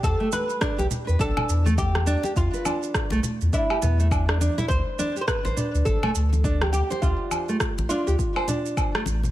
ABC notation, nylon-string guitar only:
X:1
M:4/4
L:1/16
Q:"Swing 16ths" 1/4=103
K:Ddor
V:1 name="Nylon-string guitar"
z A, z2 D G z B D3 A, z2 D G | z B D3 A, z2 D G B, A, D D D E | z2 D G z c D3 A, z2 D G z c | D3 A, z2 D G z c D3 A, z2 |]